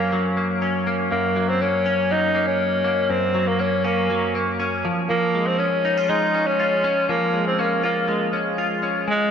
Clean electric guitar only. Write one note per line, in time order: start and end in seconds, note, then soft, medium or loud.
0.00 1.10 F#2 medium
0.00 0.11 F#3 medium
0.00 0.36 A#3 medium
0.00 0.62 C#4 medium
0.12 1.35 F#3 medium
0.37 0.86 A#3 soft
0.62 1.85 C#4 medium
0.87 1.60 A#3 medium
1.11 3.08 F#2 medium
1.36 2.09 F#3 medium
1.61 2.34 A#3 medium
1.86 3.84 C#4 medium
2.11 3.33 F#3 medium
2.35 2.83 A#3 medium
2.84 3.58 A#3 medium
3.10 4.89 F#2 medium
3.35 4.09 F#3 medium
3.59 4.34 A#3 medium
3.84 4.59 C#4 medium
4.10 4.89 F#3 medium
4.35 4.89 A#3 medium
4.60 5.60 C#4 medium
4.85 5.09 F3 medium
5.10 7.08 F3 medium
5.35 6.09 G#3 medium
5.60 6.33 C#4 medium
5.85 5.97 D#4 medium
5.97 6.58 F4 medium
6.09 7.33 G#3 medium
6.35 6.83 C#4 medium
6.60 7.82 F4 medium
6.84 7.58 C#4 medium
7.09 9.07 F3 medium
7.34 8.08 G#3 medium
7.59 8.32 C#4 medium
7.83 8.57 F4 medium
8.08 9.08 G#3 medium
8.33 8.82 C#4 soft
8.58 9.13 F4 medium
8.83 9.13 C#4 medium
9.08 9.31 G#3 medium